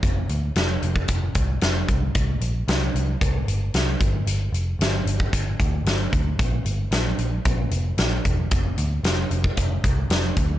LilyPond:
<<
  \new Staff \with { instrumentName = "Picked electric bass" } { \clef bass \time 4/4 \key f \major \tempo 4 = 113 f,,8 d,8 f,,8 f,,8 f,,8 c,8 f,,8 c,8 | c,8 bes,,8 c,8 c,8 c,8 g,,8 c,8 g,,8 | g,,8 f,,8 g,,8 g,,8 g,,8 d,8 g,,8 d,8 | bes,,8 g,,8 bes,,8 bes,,8 bes,,8 f,,8 bes,,8 e,,8 |
f,,8 d,8 f,,8 f,,8 f,,8 c,8 f,,8 d,8 | }
  \new DrumStaff \with { instrumentName = "Drums" } \drummode { \time 4/4 <hh bd>8 hh8 <hh sn>8 hh16 bd16 <hh bd>8 <hh bd>8 <hh sn>8 <hh bd>8 | <hh bd>8 hh8 <hh sn>8 hh8 <hh bd>8 hh8 <hh sn>8 <hh bd>8 | hh8 hh8 <hh sn>8 hh16 bd16 <hh bd>8 <hh bd>8 <hh sn>8 <hh bd>8 | <hh bd>8 hh8 <hh sn>8 hh8 <hh bd>8 hh8 <hh sn>8 <hh bd>8 |
<hh bd>8 hh8 <hh sn>8 hh16 bd16 <hh bd>8 <hh bd>8 <hh sn>8 <hh bd>8 | }
>>